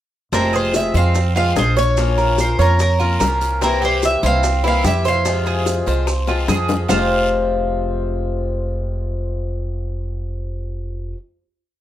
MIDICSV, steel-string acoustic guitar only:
0, 0, Header, 1, 3, 480
1, 0, Start_track
1, 0, Key_signature, -4, "minor"
1, 0, Tempo, 409836
1, 383, Time_signature, 4, 2, 24, 8
1, 13828, End_track
2, 0, Start_track
2, 0, Title_t, "Steel-string acoustic guitar"
2, 0, Program_c, 0, 25
2, 379, Note_on_c, 0, 48, 61
2, 381, Note_on_c, 0, 53, 77
2, 387, Note_on_c, 0, 56, 72
2, 389, Note_on_c, 0, 60, 74
2, 394, Note_on_c, 0, 65, 75
2, 1094, Note_off_c, 0, 48, 0
2, 1098, Note_off_c, 0, 56, 0
2, 1099, Note_off_c, 0, 60, 0
2, 1107, Note_off_c, 0, 65, 0
2, 1111, Note_on_c, 0, 65, 61
2, 1117, Note_on_c, 0, 60, 65
2, 1122, Note_on_c, 0, 56, 61
2, 1126, Note_off_c, 0, 53, 0
2, 1131, Note_on_c, 0, 53, 52
2, 1336, Note_off_c, 0, 53, 0
2, 1340, Note_off_c, 0, 56, 0
2, 1340, Note_off_c, 0, 65, 0
2, 1343, Note_off_c, 0, 60, 0
2, 1592, Note_on_c, 0, 65, 62
2, 1600, Note_on_c, 0, 60, 61
2, 1612, Note_on_c, 0, 53, 52
2, 1612, Note_on_c, 0, 56, 57
2, 1818, Note_off_c, 0, 53, 0
2, 1821, Note_off_c, 0, 65, 0
2, 1825, Note_off_c, 0, 60, 0
2, 1826, Note_off_c, 0, 56, 0
2, 1832, Note_on_c, 0, 53, 45
2, 1840, Note_on_c, 0, 56, 43
2, 1844, Note_on_c, 0, 60, 47
2, 1852, Note_on_c, 0, 65, 52
2, 2294, Note_off_c, 0, 53, 0
2, 2306, Note_off_c, 0, 56, 0
2, 2308, Note_off_c, 0, 60, 0
2, 2308, Note_on_c, 0, 53, 73
2, 2312, Note_off_c, 0, 65, 0
2, 2318, Note_on_c, 0, 58, 75
2, 2325, Note_on_c, 0, 61, 73
2, 2328, Note_on_c, 0, 65, 74
2, 3018, Note_off_c, 0, 65, 0
2, 3022, Note_off_c, 0, 53, 0
2, 3022, Note_off_c, 0, 61, 0
2, 3032, Note_on_c, 0, 65, 64
2, 3036, Note_on_c, 0, 61, 61
2, 3043, Note_off_c, 0, 58, 0
2, 3048, Note_on_c, 0, 58, 57
2, 3263, Note_off_c, 0, 65, 0
2, 3265, Note_off_c, 0, 61, 0
2, 3268, Note_off_c, 0, 58, 0
2, 3518, Note_on_c, 0, 65, 65
2, 3525, Note_on_c, 0, 61, 52
2, 3536, Note_on_c, 0, 58, 49
2, 3747, Note_off_c, 0, 65, 0
2, 3750, Note_off_c, 0, 58, 0
2, 3750, Note_off_c, 0, 61, 0
2, 3757, Note_on_c, 0, 53, 50
2, 3764, Note_on_c, 0, 58, 51
2, 3773, Note_on_c, 0, 61, 51
2, 3780, Note_on_c, 0, 65, 51
2, 4227, Note_off_c, 0, 53, 0
2, 4231, Note_off_c, 0, 58, 0
2, 4235, Note_off_c, 0, 61, 0
2, 4238, Note_off_c, 0, 65, 0
2, 4240, Note_on_c, 0, 48, 67
2, 4246, Note_on_c, 0, 52, 75
2, 4252, Note_on_c, 0, 58, 69
2, 4258, Note_on_c, 0, 60, 73
2, 4262, Note_on_c, 0, 64, 73
2, 4940, Note_off_c, 0, 64, 0
2, 4949, Note_off_c, 0, 48, 0
2, 4952, Note_off_c, 0, 52, 0
2, 4952, Note_off_c, 0, 58, 0
2, 4954, Note_on_c, 0, 64, 70
2, 4962, Note_off_c, 0, 60, 0
2, 4966, Note_on_c, 0, 58, 62
2, 4966, Note_on_c, 0, 60, 66
2, 4977, Note_on_c, 0, 52, 60
2, 5186, Note_off_c, 0, 64, 0
2, 5192, Note_off_c, 0, 58, 0
2, 5192, Note_off_c, 0, 60, 0
2, 5197, Note_off_c, 0, 52, 0
2, 5431, Note_on_c, 0, 64, 60
2, 5435, Note_on_c, 0, 60, 58
2, 5445, Note_on_c, 0, 58, 54
2, 5450, Note_on_c, 0, 52, 55
2, 5656, Note_off_c, 0, 52, 0
2, 5665, Note_off_c, 0, 64, 0
2, 5666, Note_off_c, 0, 60, 0
2, 5668, Note_off_c, 0, 58, 0
2, 5670, Note_on_c, 0, 52, 48
2, 5682, Note_on_c, 0, 58, 49
2, 5691, Note_on_c, 0, 60, 51
2, 5695, Note_on_c, 0, 64, 55
2, 6144, Note_off_c, 0, 52, 0
2, 6148, Note_off_c, 0, 60, 0
2, 6150, Note_off_c, 0, 58, 0
2, 6151, Note_on_c, 0, 48, 64
2, 6152, Note_on_c, 0, 53, 70
2, 6156, Note_off_c, 0, 64, 0
2, 6159, Note_on_c, 0, 56, 67
2, 6161, Note_on_c, 0, 65, 73
2, 6162, Note_on_c, 0, 60, 74
2, 6854, Note_off_c, 0, 65, 0
2, 6860, Note_off_c, 0, 60, 0
2, 6864, Note_off_c, 0, 48, 0
2, 6864, Note_off_c, 0, 53, 0
2, 6868, Note_off_c, 0, 56, 0
2, 6868, Note_on_c, 0, 65, 69
2, 6874, Note_on_c, 0, 60, 62
2, 6882, Note_on_c, 0, 53, 59
2, 6882, Note_on_c, 0, 56, 58
2, 7098, Note_off_c, 0, 53, 0
2, 7102, Note_off_c, 0, 65, 0
2, 7104, Note_off_c, 0, 56, 0
2, 7105, Note_off_c, 0, 60, 0
2, 7341, Note_on_c, 0, 65, 60
2, 7353, Note_on_c, 0, 60, 59
2, 7356, Note_on_c, 0, 56, 58
2, 7365, Note_on_c, 0, 53, 50
2, 7578, Note_off_c, 0, 53, 0
2, 7578, Note_off_c, 0, 65, 0
2, 7582, Note_off_c, 0, 56, 0
2, 7584, Note_off_c, 0, 60, 0
2, 7592, Note_on_c, 0, 53, 44
2, 7596, Note_on_c, 0, 56, 48
2, 7607, Note_on_c, 0, 60, 53
2, 7611, Note_on_c, 0, 65, 51
2, 8063, Note_off_c, 0, 53, 0
2, 8064, Note_on_c, 0, 41, 69
2, 8065, Note_off_c, 0, 56, 0
2, 8070, Note_off_c, 0, 60, 0
2, 8072, Note_off_c, 0, 65, 0
2, 8076, Note_on_c, 0, 48, 75
2, 8077, Note_on_c, 0, 53, 70
2, 8086, Note_on_c, 0, 56, 76
2, 8086, Note_on_c, 0, 60, 71
2, 8096, Note_on_c, 0, 65, 80
2, 13064, Note_off_c, 0, 41, 0
2, 13077, Note_off_c, 0, 48, 0
2, 13078, Note_off_c, 0, 53, 0
2, 13087, Note_off_c, 0, 56, 0
2, 13087, Note_off_c, 0, 60, 0
2, 13097, Note_off_c, 0, 65, 0
2, 13828, End_track
3, 0, Start_track
3, 0, Title_t, "Muted steel-string acoustic guitar strokes"
3, 1344, Note_on_c, 9, 29, 58
3, 1462, Note_off_c, 9, 29, 0
3, 3277, Note_on_c, 9, 29, 59
3, 3395, Note_off_c, 9, 29, 0
3, 5203, Note_on_c, 9, 29, 55
3, 5320, Note_off_c, 9, 29, 0
3, 7112, Note_on_c, 9, 29, 64
3, 7229, Note_off_c, 9, 29, 0
3, 13828, End_track
0, 0, End_of_file